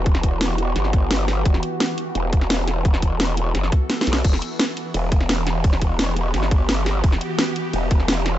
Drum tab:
CC |------------------------------------------------|------------------------------------------------|------------------------------------------------|x-----------------------------------------------|
RD |------------------------------------------------|------------------------------------------------|------------------------------------------------|x-----------x-----------x-----------x-----------|
HH |x-----x-----x-----x-----x-----x-----x-----x-----|x-----x-----x-----x-----x-----x-----x-----x-----|x-----x-----x-----x-----x-----x-----x-----x-----|x-----x-----x-----x-----x-----x-----x-----x-----|
SD |---o--------o-----------o--o--------o-----o-----|---o--------o--------------------o--o-----o-----|---o--------o-----------o--o--------o---o---o---|---o--------o--------------------o--o-----o-----|
BD |o-----o-----------------------o-----------------|o-----------------------------o-----------------|o-----o-----------------------o-----------------|o-----------------------------o-----------------|

CC |------------------------------------------------|------------------------------------------------|
RD |x-----------x-----------x-----------x-----------|x-----------x-----------x-----------x-----------|
HH |x-----x-----x-----x-----x-----x-----x-----x-----|x-----x-----x-----x-----x-----x-----x-----x-----|
SD |---o--------o-----------o--o--------o-----o-----|---o--------o--------------------o--o-----o-----|
BD |o-----o-----------------------o-----------------|o-----------------------------o-----------------|